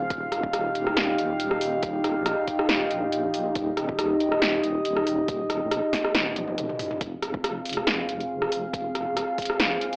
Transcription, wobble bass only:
0.10 2.18 D#1 loud
2.16 2.36 A#1 medium
2.69 2.89 D#1 medium
2.91 3.54 A#1 loud
3.56 5.63 D#1 loud
5.62 5.81 A#1 medium
6.15 6.35 D#1 medium
6.36 6.50 A#1 medium
6.48 6.68 F1 medium
7.01 9.08 F1 loud
9.07 9.26 D#1 medium
9.60 9.80 F1 medium

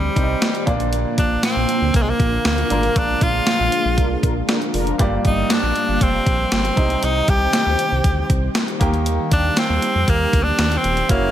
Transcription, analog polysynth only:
3.98 4.09 D4 medium
3.98 4.09 F4 medium
3.98 4.09 A#4 medium
4.23 4.34 D4 medium
4.23 4.34 F4 medium
4.23 4.34 A#4 medium
4.49 4.59 D4 medium
4.49 4.59 F4 medium
4.49 4.59 A#4 medium
4.74 4.96 D4 loud
4.74 4.96 F4 medium
4.74 4.96 A#4 loud

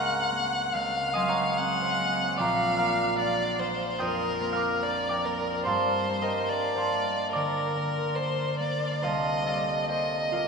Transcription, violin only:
0.00 0.75 F#5 medium
0.73 1.58 F5 medium
1.57 2.38 F#5 medium
2.39 3.17 F5 medium
3.19 3.61 D5 medium
3.59 4.03 C5 medium
4.01 4.84 A#4 medium
4.83 5.27 D5 medium
5.25 5.66 A#4 medium
5.66 6.50 C5 medium
6.49 7.32 D5 medium
7.32 8.17 A#4 medium
8.15 8.59 C5 medium
8.59 9.05 D5 medium
9.03 9.90 D#5 medium
9.90 10.48 D#5 medium

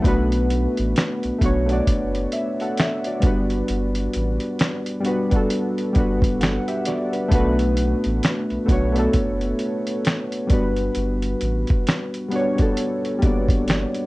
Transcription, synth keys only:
0.02 1.25 A3 loud
0.02 1.26 B3 medium
0.02 1.27 D4 medium
0.07 1.27 F#4 medium
0.07 1.28 B4 loud
1.38 1.63 A3 medium
1.38 1.64 B3 medium
1.42 1.65 D4 medium
1.42 1.66 F#4 medium
1.42 1.67 C#5 medium
1.66 3.20 A3 medium
1.66 3.20 B3 medium
1.66 3.22 D4 medium
1.71 1.86 F#4 medium
1.71 1.86 D5 medium
1.87 2.30 F#4 medium
1.87 2.30 D5 medium
2.33 2.58 E5 medium
2.61 2.78 A4 medium
2.61 2.78 F#5 medium
2.80 3.04 E5 medium
3.07 3.24 F#4 soft
3.07 3.49 D5 medium
3.20 4.83 G3 medium
3.20 4.83 B3 medium
3.20 4.85 D4 medium
3.25 4.85 F#4 medium
3.25 4.86 B4 medium
5.00 5.26 G3 medium
5.00 5.27 B3 medium
5.00 5.28 D4 medium
5.06 5.29 F#4 medium
5.06 5.30 B4 medium
5.29 5.87 G3 medium
5.29 5.88 B3 medium
5.29 5.89 D4 medium
5.34 5.90 F#4 medium
5.34 5.90 A4 medium
5.93 6.75 G3 medium
5.93 6.76 B3 medium
5.93 6.41 D4 medium
5.98 6.42 F#4 medium
5.98 6.43 B4 loud
6.40 6.67 A4 medium
6.40 6.67 F#5 medium
6.68 6.86 G4 medium
6.68 6.86 E5 medium
6.87 7.13 F#4 medium
6.87 7.13 D5 medium
7.13 7.30 D4 medium
7.13 7.34 B4 medium
7.28 8.52 A3 loud
7.28 8.53 B3 medium
7.28 8.53 D4 loud
7.33 8.54 F#4 medium
7.33 8.55 B4 loud
8.66 8.90 A3 medium
8.66 8.91 B3 medium
8.66 8.92 D4 medium
8.71 8.93 F#4 medium
8.71 8.94 C#5 loud
8.92 10.47 A3 medium
8.92 10.47 B3 medium
8.92 10.49 D4 medium
8.97 10.50 F#4 medium
8.97 10.51 A4 loud
10.47 12.10 G3 medium
10.47 12.11 B3 medium
10.47 12.12 D4 medium
10.52 12.13 F#4 medium
10.52 12.13 B4 medium
12.29 12.54 G3 medium
12.29 12.55 B3 medium
12.29 12.56 D4 medium
12.34 12.56 F#4 medium
12.34 12.57 C#5 medium
12.55 13.14 G3 medium
12.55 13.15 B3 medium
12.55 13.16 D4 medium
12.61 13.16 F#4 medium
12.61 13.17 A4 medium
13.19 14.02 G3 medium
13.19 13.30 A#3 medium
13.19 14.04 D4 medium
13.24 14.06 B3 medium
13.24 14.05 F#4 medium
13.24 14.05 D5 medium

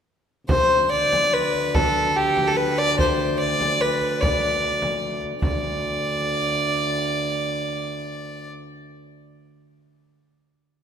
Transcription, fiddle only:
0.49 0.91 C5 medium
0.91 1.34 D5 medium
1.33 1.76 B4 medium
1.75 2.17 A4 medium
2.16 2.49 G4 medium
2.47 2.58 A4 medium
2.56 2.80 B4 medium
2.78 2.99 D5 medium
2.99 3.38 C5 medium
3.40 3.82 D5 medium
3.81 4.23 B4 medium
4.21 5.22 D5 medium
5.42 8.51 D5 medium

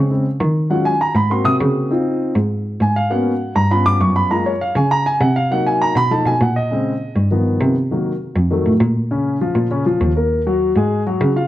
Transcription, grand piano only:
0.10 0.24 C#3 soft
0.10 0.24 G#3 soft
0.10 0.25 C4 medium
0.70 0.90 F#3 medium
0.70 0.91 G#3 soft
0.70 0.91 C#4 soft
0.70 0.91 F4 medium
0.70 0.85 F#5 medium
0.85 1.00 G#5 medium
1.01 1.16 A#5 medium
1.16 1.31 B5 medium
1.30 1.88 A#3 medium
1.30 1.88 C4 soft
1.30 1.88 F#4 medium
1.30 1.46 C6 medium
1.45 1.55 D#6 loud
1.91 2.34 C4 medium
1.91 2.34 D#4 soft
1.91 2.34 F4 medium
2.82 2.96 G#5 medium
2.96 3.11 F5 medium
3.10 3.31 A#3 medium
3.10 3.31 B3 medium
3.10 3.31 C#4 medium
3.10 3.31 F#4 medium
3.10 3.53 F#5 medium
3.56 3.71 A#5 medium
3.71 4.28 B3 medium
3.71 4.28 C#4 medium
3.71 4.28 F4 medium
3.71 3.86 B5 medium
3.86 4.01 D6 loud
4.01 4.16 C#6 medium
4.16 4.31 B5 medium
4.30 4.51 G#3 medium
4.30 4.51 A#3 medium
4.30 4.51 F4 medium
4.30 4.46 A#5 medium
4.46 4.61 C#5 medium
4.61 4.76 F5 medium
4.76 4.91 G#5 medium
4.91 5.06 A#5 loud
5.06 5.21 G#5 loud
5.21 5.36 F#5 medium
5.36 5.51 F5 medium
5.51 5.94 F#3 medium
5.51 5.94 A#3 medium
5.51 5.94 D#4 medium
5.51 5.66 F#5 medium
5.67 5.81 G#5 medium
5.82 5.96 A#5 loud
5.97 6.11 B5 loud
6.11 6.31 F3 medium
6.11 6.31 A3 medium
6.11 6.32 D#4 medium
6.11 6.26 A5 medium
6.27 6.41 G#5 medium
6.42 6.56 F#5 medium
6.56 7.27 D#5 medium
6.71 6.91 C#3 medium
6.71 6.91 G#3 medium
6.71 6.92 C4 medium
7.31 7.74 D#3 medium
7.31 7.74 F3 medium
7.31 7.74 B3 medium
7.91 8.11 D#3 medium
7.91 8.11 F#3 medium
7.91 8.12 A#3 medium
8.51 8.71 D#3 medium
8.51 8.71 F#3 medium
8.51 8.71 A3 medium
9.11 9.36 C#3 medium
9.11 9.36 C#4 medium
9.41 9.66 F3 medium
9.41 9.66 F4 medium
9.71 9.83 C#3 medium
9.71 9.83 C#4 medium
9.86 10.11 F3 medium
9.86 10.11 F4 medium
10.16 10.41 A#3 medium
10.16 10.41 A#4 medium
10.47 10.71 F#3 medium
10.47 10.71 F#4 medium
10.77 11.01 G#3 medium
10.77 11.01 G#4 medium
11.06 11.31 F#3 medium
11.06 11.31 F#4 medium
11.36 11.47 F4 medium
11.36 11.47 F5 medium

